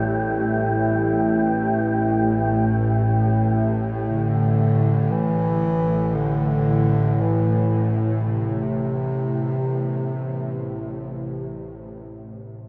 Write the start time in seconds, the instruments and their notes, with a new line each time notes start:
Already playing: synth drone A1 A2, ambient pad A3 E4 B4 E5 G5, synth texture G4
4.08 bass clarinet D3
5.11 bass clarinet E3
6.15 bass clarinet D3
7.21 bass clarinet E3
8.25 synth drone A1 A2, bass clarinet C3, ambient pad A3
8.42 ambient pad E4
8.58 ambient pad B4
8.73 ambient pad C5